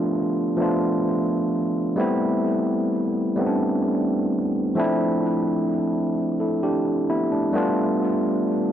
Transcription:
0.00 0.14 F3 medium
0.00 0.15 A3 medium
0.00 0.15 B3 medium
0.00 0.16 D4 medium
0.00 0.20 F4 medium
0.00 1.99 G4 medium
0.57 1.54 F3 medium
0.57 1.54 A3 medium
0.57 1.55 B3 medium
0.57 1.56 D4 medium
0.62 1.56 F4 medium
1.96 2.93 G3 medium
1.96 2.94 A3 medium
1.96 2.94 B3 medium
1.96 2.95 C4 medium
2.01 2.95 E4 loud
3.36 4.33 G3 medium
3.36 4.33 A3 medium
3.36 4.34 B3 medium
3.36 4.35 C4 medium
3.41 3.45 C#4 medium
3.47 4.38 D4 medium
4.75 5.72 F3 medium
4.75 5.73 A3 medium
4.75 5.73 C4 medium
4.75 5.74 D4 medium
4.79 5.74 E4 loud
6.40 6.62 E4 soft
6.40 6.62 A4 soft
6.63 7.07 D4 medium
6.63 7.07 G4 medium
7.10 7.32 B3 medium
7.10 7.31 E4 medium
7.32 7.52 A3 soft
7.32 7.55 D4 medium
7.53 8.50 G3 medium
7.53 8.51 A3 medium
7.53 8.52 B3 medium
7.53 8.52 D4 medium
7.58 8.53 F4 medium

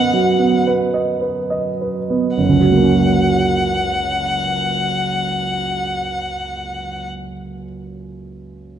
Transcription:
0.00 2.41 F#2 soft
0.00 0.39 B3 soft
0.00 0.67 B4 soft
0.00 0.94 D#5 soft
0.00 0.67 F#5 medium
0.13 0.56 F#3 soft
0.39 0.83 B3 soft
0.67 1.11 B4 soft
0.94 1.39 D#5 soft
1.21 1.68 B4 soft
1.50 1.98 D#5 soft
1.81 2.28 B4 soft
2.10 2.38 B3 soft
2.37 7.09 F#1 soft
2.37 7.08 F#5 soft
2.49 7.20 C#2 soft
2.60 7.31 F#3 soft
2.71 7.42 A#3 soft
2.82 7.53 C#4 soft

